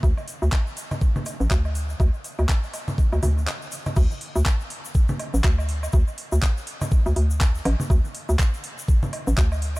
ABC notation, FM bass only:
X:1
M:4/4
L:1/16
Q:"Swing 16ths" 1/4=122
K:C
V:1 name="FM bass" clef=bass
D,, z2 D,, z6 z A,,, D,,4 | D,, z2 D,, z4 z D,, D,,2 z4 | D,, z2 D,, z6 z A,,, D,,4 | D,, z2 D,, z4 z D,, D,,4 A,,, z |
D,, z2 D,, z6 z A,,, D,,4 |]